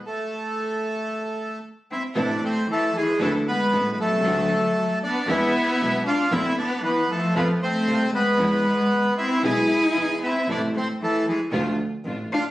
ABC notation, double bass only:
X:1
M:4/4
L:1/8
Q:1/4=115
K:Am
V:1 name="Double bass" clef=bass
z8 | A,,, z3 D,, z A,,, C,, | D,, z3 E,, z B,,, z | E,, z3 F,, z C,, z |
E,, z3 B,,, z E,, z | A,,, z3 D,, z A,,, z |]